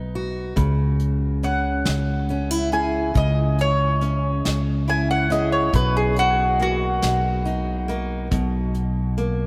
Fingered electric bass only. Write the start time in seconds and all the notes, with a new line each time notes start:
Already playing: B1
0.57 C#2
1.88 C#2
3.15 C#2
4.47 C#2
5.74 B1
7.04 B1
8.32 B1